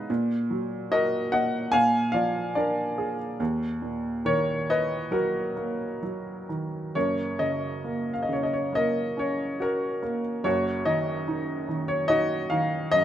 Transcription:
upright piano
Already playing: B3 D#4 G#4 B4 D#5 F5
0.10 A#2
0.50 F#3
0.92 F#4 A#4 D#5
1.32 A#2 D#5 F#5
1.72 A#2 F5 G#5
2.12 F3 D5 F5
2.55 D4 A#4 D5
2.98 G#4
3.40 D#2
3.82 A#2
4.25 D#3 A#4 C#5
4.70 B4 D#5
5.11 F#3 F#4 A#4
5.56 A#3
6.03 F#3
6.49 D#3
6.95 F#1 F#2 A#4 C#5
7.39 C#3 D#5
7.84 A#3
8.14 F5
8.22 D#5
8.29 C#3 C#5
8.43 D#5
8.53 C#5
8.73 A#3 D#5
8.77 A#4
9.17 C#4 C#5
9.60 F#4 A#4
10.02 A#3
10.44 F#1 F#2 F#4 C#5
10.85 D#3 D#5
11.28 D#4
11.69 D#3
11.88 C#5
12.08 D#4 F#4 D#5
12.50 D#3 F5
12.91 F#2 D#5

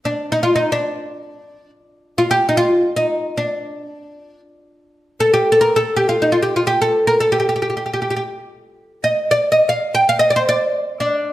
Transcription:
oud
0.05 D4
0.32 D#4
0.43 F4
0.56 D#4
0.72 D4
2.18 F4
2.31 G4
2.49 D#4
2.57 F4
2.96 D#4
3.37 D4
5.20 A4
5.34 G4
5.52 A4
5.61 A#4
5.76 A4
5.97 G4
6.09 F4
6.22 D#4
6.32 F4
6.42 G4
6.56 F4
6.67 G4
6.82 A4
7.07 A#4
7.20 A4
7.32 G4
7.40 G4
7.49 G4
7.56 G4
7.62 G4
7.70 G4
7.77 G4
7.86 G4
7.93 G4
8.02 G4
8.10 G4
8.16 G4
9.04 D#5
9.31 D5
9.52 D#5
9.69 F5
9.95 G5
10.09 F5
10.19 D#5
10.30 D5
10.36 C5
10.49 D5
11.00 D4

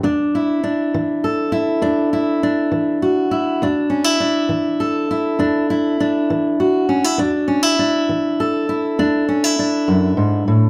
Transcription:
steel-string acoustic guitar
0.03 E2 D4
0.35 E4
0.64 D4
0.94 E3
1.24 A4
1.52 E4
1.82 E2 D4
2.13 E4
2.43 D4
2.72 E3
3.02 F#4
3.31 E4
3.62 E2 D4
3.90 C#4
4.04 E4
4.20 D4
4.49 E3
4.80 A4
5.11 E4
5.39 E2 D4
5.70 E4
6.00 D4
6.30 E3
6.60 F#4
6.89 C#4
7.04 E4
7.18 E2 D4
7.48 C#4
7.63 E4
7.79 D4
8.09 E3
8.40 A4
8.69 E4
8.99 E2 D4
9.29 C#4
9.44 E4
9.59 D4
9.88 F#2
10.17 G#2
10.48 A2

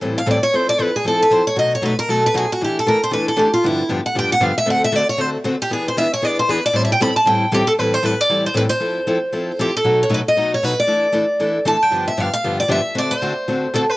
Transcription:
steel-string acoustic guitar
0.01 A2 E3 G3 C4 E4 A4
0.18 F5
0.26 A2 E3 G3 C4 E4 A4
0.31 D5
0.43 C#5
0.53 F3 C4 E4 A4 C5
0.69 D5
0.79 F3 C4 E4 A4 B4
0.96 G#4
1.04 F3 C4 E4 A4
1.22 B4
1.30 F3 C4 E4 A4 C5
1.47 C#5
1.56 B2 F#3 A3 D#4 F#4 D#5
1.75 C#5
1.82 B2 F#3 A3 D#4 F#4 B4
1.99 A#4
2.08 B2 F#3 A3 D#4 F#4 A4
2.26 B4
2.34 B2 F#3 A3 D#4 F#4 G#4
2.52 F#4
2.61 E3 A3 D4 E4 G4 A4
2.79 A4
2.86 E3 A3 D4 E4 A4 A#4
3.03 C5
3.11 E3 A3 D4 E4 A4 B4
3.28 A4
3.36 E3 A3 D4 E4 G4 A4
3.54 F4
3.63 G2 D3 F3 B3 D4 E4 G4
3.89 G2 D3 F3 B3 D4 G4
4.06 F#5
4.15 G2 D3 F3 B3 D4 G4 G5
4.32 F#5
4.40 G2 D3 F3 B3 D4 G4 F5
4.58 E5
4.66 D3 A3 C4 F#4 A4
4.70 F#5
4.84 E5
4.92 D3 A3 C4 F#4 A4 D5
5.09 C#5
5.18 D3 A3 C4 F#4 A4 C5
5.44 D3 A3 C4 F#4 A4
5.62 G4
5.70 E3 B3 D4 G#4
5.88 C5
5.97 E3 B3 D4 G#4 E5
6.14 C#5
6.22 E3 B3 D4 G#4 D5
6.39 C5
6.49 E3 B3 D4 G#4 B4
6.66 D5
6.73 A2 E3 G3 C4 E4 A4 C5
6.85 E5
6.92 G5
7.00 A2 E3 G3 C4 E4 A4 B5
7.16 A5
7.25 A2 E3 G3 C4 E4 A4 G5
7.52 A2 E3 G3 C4 E4 G4 A4
7.67 A4
7.78 A2 E3 G3 C4 E4 A4 B4
7.94 C5
8.03 A2 E3 G3 C4 E4 A4 B4
8.21 D5
8.29 A2 E3 G3 C4 E4 A4
8.46 C5
8.54 A2 E3 G3 C4 E4 A4 B4
8.69 C5
8.80 F3 C4 E4 A4
9.07 F3 C4 E4 A4
9.32 F3 C4 E4 A4
9.59 F3 C4 E4 G4 A4
9.77 A4
9.84 B2 F#3 A3 D#4 F#4
10.03 C#5
10.09 B2 F#3 A3 D#4 F#4
10.14 B4
10.28 D#5
10.37 B2 F#3 A3 D#4 F#4
10.54 C#5
10.63 B2 F#3 A3 D#4 F#4 B4
10.79 D5
10.87 E3 A3 D4 E4 A4
11.12 E3 A3 D4 E4 A4
11.40 E3 A3 D4 E4 A4
11.65 E3 A3 D4 E4 A4 A5
11.83 G5
11.91 G2 D3 F3 B3 D4 G4
12.08 E5
12.17 G2 D3 F3 B3 D4 G4 F5
12.33 F5
12.44 G2 D3 F3 B3 D4 G4
12.60 D5
12.68 G2 D3 F3 B3 D4 G4 E5
12.95 D3 A3 C4 F#4 A4 D5
13.11 C5
13.22 D3 A3 C4 F#4 A4
13.48 D3 A3 C4 F#4 A4
13.74 D3 A3 C4 F#4 A4
13.89 B4

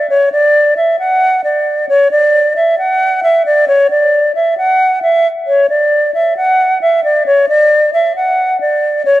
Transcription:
flute
0.10 C#5
0.32 D5
0.77 E5
0.99 F#5
1.44 D5
1.89 C#5
2.11 D5
2.56 E5
2.78 F#5
3.23 E5
3.46 D5
3.68 C#5
3.90 D5
4.35 E5
4.58 F#5
5.02 E5
5.47 C#5
5.70 D5
6.14 E5
6.37 F#5
6.82 E5
7.04 D5
7.26 C#5
7.49 D5
7.93 E5
8.16 F#5
8.61 D5
9.05 C#5

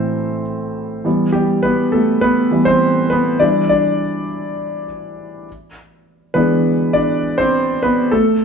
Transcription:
grand piano
Already playing: A2 E3 A3 C4 A4 C5
1.05 E3 G3 B3
1.32 G3 G4
1.63 B3 B4
1.92 A3 A4
2.21 B3 B4
2.51 E3 G3 B3
2.65 C4 C5
3.10 B3 B4
3.40 E3 G3 D4 E4 D5
3.69 D4 D5
6.34 E3 G#3 B3 D4 B4
6.93 D4 D5
7.38 C4 C5
7.83 B3 B4
8.11 A3 A4

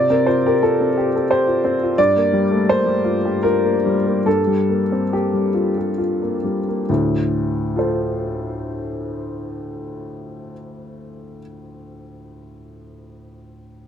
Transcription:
upright piano
Already playing: C3 D5
0.10 C4 A#4
0.26 F4 C5
0.46 G4 A#4
0.63 F4 A4
0.81 C4
0.98 G4
1.15 A4
1.31 G4 C5
1.47 F4
1.64 C4
1.83 F4
1.98 G2 D5
2.16 A#3
2.33 G3
2.51 A3
2.69 A#3 C5
2.86 G3
3.05 F4
3.25 G4
3.43 F4 A#4
3.65 A#3
3.86 G3
4.06 A#3
4.26 G2 A4
4.47 G3
4.69 A#3
4.92 C4
5.13 A#3 G4
5.34 G3
5.54 F4
5.78 G4
5.98 F4
6.22 A#3
6.44 G3
6.68 A#3
6.89 D2 A2
7.76 F4 A4 C5

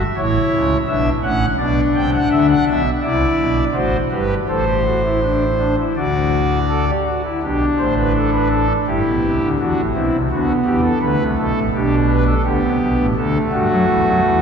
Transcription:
pipe organ
0.16 A1 A2 E4 C#5
0.52 C#2 C#3
0.87 B1 B2 D4 E5
1.23 A1 A2 C#4 F#5
1.58 B1 B2 D4 D5
1.95 C2 C3 G5
2.14 F#5
2.31 D2 D3 E5
2.49 F#5
2.67 B1 B2 E5
3.03 C2 C3 E4 D5
3.39 B1 B2
3.74 A1 A2 F#4 C5
4.12 G1 G2 G4 B4
4.49 A1 A2 A4 C5
4.67 G4
4.86 F#4
5.04 E4
5.22 D4
5.59 D4
5.77 E4
5.96 D2 D3 F#4 D5
6.69 A4
6.88 G4
7.07 F#4
7.24 E4
7.42 B1 B2 D4 G4
7.79 A1 A2 C5
7.97 B4
8.15 A4
8.33 B4
8.51 A4
8.87 G1 G2 E4 G4
9.05 B1 B2
9.23 C2 C3
9.41 D2 D3
9.59 E2 E3 D4 F#4
9.77 A1 A2
9.94 B1 B2 C4 E4
10.13 C2 C3
10.31 D2 D3 B3 F#4
10.65 E2 E3 G4
10.83 A4
11.01 D2 D3 A3 B4
11.19 C2 C3
11.37 B1 B2 A4
11.55 A1 A2
11.73 B1 B2 D4 G4
12.09 B4
12.27 A4
12.44 D2 D3 B3 G4
12.62 C2 C3
12.80 B1 B2
12.98 A1 A2
13.16 D2 D3 A3 A4
13.52 G2 G3 F#4
13.70 F#2 F#3
13.88 E2 E3
14.06 F#2 F#3
14.24 E2 E3

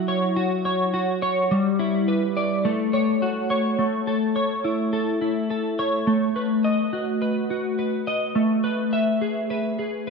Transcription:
clean electric guitar
Already playing: F#3 E4 F#4
0.08 C#5
0.36 F#4
0.65 C#5
0.94 F#4
1.22 C#5
1.51 G3
1.79 E4
2.08 B4
2.37 D5
2.65 A3
2.93 C#5
3.22 F#4
3.50 C#5
3.79 A3
4.07 A4
4.36 C#5
4.64 E4
4.93 A4
5.21 E4
5.50 A4
5.79 C#5
6.07 A3
6.36 B4
6.64 D#5
6.93 F#4
7.22 B4
7.50 F#4
7.79 B4
8.07 D#5
8.35 A3
8.64 B4
8.93 E5
9.21 G#4
9.50 B4
9.79 G#4

